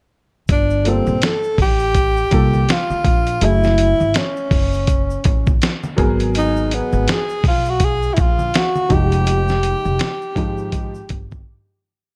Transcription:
0.48 upright bass G1, tenor saxophone D4, kick, closed hi-hat, shaker
0.70 shaker
0.84 upright piano G3 A#3 F4 A4, closed hi-hat, shaker
0.89 tenor saxophone C4
1.07 upright bass A#1, high conga, shaker
1.22 tenor saxophone A4, snare, closed hi-hat, shaker
1.43 shaker
1.58 upright bass A1, tenor saxophone G4, kick, open hi-hat, high conga, low conga, shaker
1.79 shaker
1.94 kick, closed hi-hat, shaker
2.17 shaker
2.31 upright bass C2, upright piano G3 A#3 F4 A4, kick, closed hi-hat, low conga, shaker
2.54 high conga, shaker
2.69 tenor saxophone F4, snare, closed hi-hat, shaker
2.90 muted upright bass stroke, high conga, shaker
3.05 upright bass A#1, kick, closed hi-hat, low conga, shaker
3.27 closed hi-hat, shaker
3.41 upright bass F#1, upright piano F#3 A3 E4 G#4, tenor saxophone E4, closed hi-hat, shaker
3.63 snare, shaker
3.78 closed hi-hat, shaker
4.00 upright bass G#1, high conga, shaker
4.14 tenor saxophone C#4, snare, closed hi-hat, shaker
4.37 shaker
4.51 upright bass F#1, kick, open hi-hat, high conga, low conga, shaker
4.73 shaker
4.87 kick, closed hi-hat, shaker
5.10 shaker
5.24 upright bass A1, kick, closed hi-hat, low conga, shaker
5.47 kick, high conga, shaker
5.62 snare, closed hi-hat, shaker
5.83 high conga, shaker
5.97 upright bass G#1, upright piano F#3 B3 G#4 A#4, kick, closed hi-hat, low conga, shaker
6.20 closed hi-hat, shaker
6.34 tenor saxophone D#4, closed hi-hat, shaker
6.57 shaker
6.71 tenor saxophone B3, closed hi-hat, shaker
6.93 upright bass G#1, high conga, shaker
7.08 tenor saxophone G#4, snare, closed hi-hat, shaker
7.29 shaker
7.44 upright bass B1, kick, open hi-hat, high conga, low conga, shaker
7.48 tenor saxophone F4
7.65 shaker
7.70 tenor saxophone F#4
7.80 kick, closed hi-hat, shaker
7.84 tenor saxophone G#4
8.03 shaker
8.14 upright bass A#1, tenor saxophone E4, kick, closed hi-hat, low conga, shaker
8.21 tenor saxophone F4
8.39 high conga, shaker
8.54 tenor saxophone F#4, snare, closed hi-hat, shaker
8.75 high conga, shaker
8.89 upright bass F1, upright piano F3 G#3 D#4 G4, kick, closed hi-hat, low conga, shaker
8.94 tenor saxophone G4
9.12 closed hi-hat, shaker
9.26 closed hi-hat, shaker
9.48 snare, shaker
9.63 closed hi-hat, shaker
9.85 upright bass F1, high conga, shaker
9.99 snare, closed hi-hat, shaker
10.22 shaker
10.35 upright bass G#1, upright piano F3 G#3 D#4 G4, kick, closed hi-hat, high conga, low conga, shaker
10.58 shaker
10.72 kick, closed hi-hat, high conga, shaker
10.95 shaker
11.09 upright bass G1, kick, closed hi-hat, low conga, shaker
11.31 kick, high conga, shaker

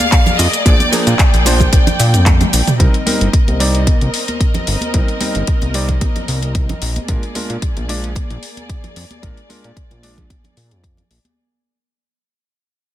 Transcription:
Already playing: string section A#3 G#4 D5, violin section F5
0.00 cabasa
0.12 kick, clap, closed hi-hat, cabasa
0.26 closed hi-hat, low conga, cabasa
0.39 analog synth bass F2, violin section D#5, open hi-hat, cabasa
0.53 closed hi-hat, cabasa
0.65 analog synth bass A#1, electric grand piano F3 A#3 D4 G#4, violin section D5, string section G5, kick, closed hi-hat, cabasa
0.80 closed hi-hat, high conga, cabasa
0.92 electric grand piano F3 A#3 D4 G#4, violin section A#4, open hi-hat, cabasa
1.07 analog synth bass A#2, closed hi-hat, cabasa
1.19 violin section G#4, kick, clap, closed hi-hat, cabasa
1.34 analog synth bass A#1, closed hi-hat, cabasa
1.46 electric grand piano F3 A#3 D4 C5, open hi-hat, high conga, cabasa
1.60 kick, closed hi-hat, low conga, cabasa
1.73 kick, closed hi-hat, cabasa
1.87 closed hi-hat, low conga, cabasa
2.00 analog synth bass A#2, open hi-hat, cabasa
2.14 analog synth bass F2, closed hi-hat, high conga, cabasa
2.26 kick, clap, closed hi-hat, high tom, cabasa
2.41 closed hi-hat, high tom, low conga, cabasa
2.53 analog synth bass A#1, open hi-hat, cabasa
2.67 closed hi-hat, mid tom, cabasa
2.79 analog synth bass C2, electric grand piano G3 C4 D#4 A#4, string section C4 A#4 D#5, kick, closed hi-hat
2.94 closed hi-hat
3.06 electric grand piano G3 C4 D#4 A#4, open hi-hat, high conga
3.21 analog synth bass G1, closed hi-hat
3.33 kick, closed hi-hat
3.48 analog synth bass C2, closed hi-hat, high conga
3.60 electric grand piano G3 C4 D#4 D5, open hi-hat
3.75 closed hi-hat
3.87 analog synth bass C2, kick, closed hi-hat, high conga
4.01 analog synth bass C2, closed hi-hat
4.14 open hi-hat
4.28 closed hi-hat, high conga
4.41 kick, closed hi-hat
4.54 closed hi-hat, low conga
4.67 analog synth bass G1, open hi-hat
4.81 closed hi-hat, high conga
4.94 analog synth bass C2, electric grand piano G3 C4 D#4 A#4, kick, closed hi-hat
5.08 closed hi-hat
5.20 electric grand piano G3 C4 D#4 A#4, open hi-hat, high conga
5.35 analog synth bass G1, closed hi-hat
5.47 kick, closed hi-hat
5.62 analog synth bass C2, closed hi-hat, high conga
5.74 electric grand piano G3 C4 D#4 D5, open hi-hat
5.88 kick, closed hi-hat, low conga
6.01 kick, closed hi-hat, high conga
6.16 closed hi-hat, low conga
6.28 analog synth bass C2, open hi-hat
6.42 closed hi-hat, high conga
6.55 kick, closed hi-hat
6.69 closed hi-hat, low conga
6.82 analog synth bass A#1, open hi-hat
6.96 closed hi-hat, high conga
7.08 analog synth bass A#1, electric grand piano G#3 D4 F4 A#4, string section A#3 G#4 D5, kick, closed hi-hat
7.23 closed hi-hat
7.35 electric grand piano G#3 D4 F4 A#4, open hi-hat, high conga
7.50 analog synth bass A#2, closed hi-hat
7.62 kick, closed hi-hat
7.77 analog synth bass A#1, closed hi-hat, high conga
7.89 electric grand piano G#3 D4 F4 D5, open hi-hat
8.04 closed hi-hat
8.15 analog synth bass A#1, kick, closed hi-hat, high conga
8.30 analog synth bass A#1, closed hi-hat
8.43 open hi-hat
8.57 closed hi-hat, high conga
8.69 kick, closed hi-hat
8.84 closed hi-hat, low conga
8.96 analog synth bass F2, open hi-hat
9.11 closed hi-hat, high conga
9.22 analog synth bass A#1, electric grand piano G#3 D4 F4 A#4, kick, closed hi-hat
9.37 closed hi-hat
9.49 electric grand piano G#3 D4 F4 A#4, open hi-hat, high conga
9.64 analog synth bass A#2, closed hi-hat
9.77 kick, closed hi-hat
9.91 analog synth bass A#1, closed hi-hat, high conga
10.03 electric grand piano G#3 D4 F4 D5, open hi-hat
10.18 kick, closed hi-hat, low conga
10.30 kick, closed hi-hat, high conga
10.44 closed hi-hat, low conga
10.57 analog synth bass A#2, open hi-hat
10.71 analog synth bass F2, closed hi-hat, high conga
10.84 kick, closed hi-hat
10.97 closed hi-hat, low conga
11.11 analog synth bass A#1, open hi-hat
11.25 closed hi-hat, high conga

